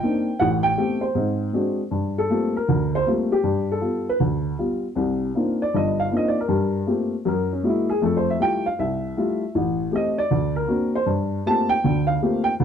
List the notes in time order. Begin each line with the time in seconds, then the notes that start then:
Already playing: G5
0.03 A#3 C4 D4 D#4
0.39 A1 A2 F#5
0.63 G5
0.78 A3 B3 C4 G4
1.01 C5
1.15 G#2 C4
1.53 G#3 C4 D4 F#4
1.91 G2
2.18 A4
2.30 G3 A3 A#3 C4 F4
2.57 A#4
2.68 D2
2.95 C5
3.06 G3 A3 A#3 C4 F4
3.32 G4
3.43 G2
3.72 A4
3.81 G3 B3 F4
4.09 B4
4.20 D2
4.58 G3 B3 F4
4.95 C2 C3
5.35 A#3 C4 D4 D#4 F4
5.62 D5
5.74 G1 G2 D#5
6.00 F5
6.12 A#3 C4 D4 D#4 F4
6.17 D#5
6.28 D5
6.40 A#4
6.48 G2 G3
6.87 A3 A#3 C4 F4 G4
7.25 F#2 A#4
7.53 C#4
7.63 G#3 A#3 E4 F#4
7.69 E4
7.89 G#4
8.02 F2 A3 A4
8.17 C5
8.30 E5
8.39 G3 A3 E4 F4 G5
8.66 F5
8.79 C2 E5
9.17 G3 A3 E4 F4
9.55 A1
9.91 A3 C4 G4
9.96 D#5
10.18 D5
10.31 D2
10.56 A#4
10.68 A#3 C4 D4 F#4
10.95 C5
11.06 G2
11.46 A3 A#3 C4 F4 G4 A5
11.69 G5
11.84 D2 D3
12.07 F5
12.21 A3 A#3 C4 F4 G4
12.44 G5
12.60 D2